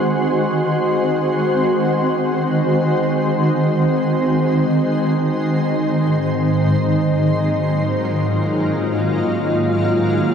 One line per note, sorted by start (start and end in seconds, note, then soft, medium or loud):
0.00 10.35 D#3 medium
0.00 5.79 G#3 medium
0.00 10.35 G#3 medium
0.00 9.51 C4 medium
0.00 10.35 D#4 medium
0.00 5.82 F#4 medium
0.00 0.16 G#4 medium
0.00 7.65 C5 medium
5.79 10.35 G#2 medium
6.61 10.35 F#3 medium
6.95 10.35 A#3 medium
7.75 10.35 F4 medium
9.88 10.35 A#4 medium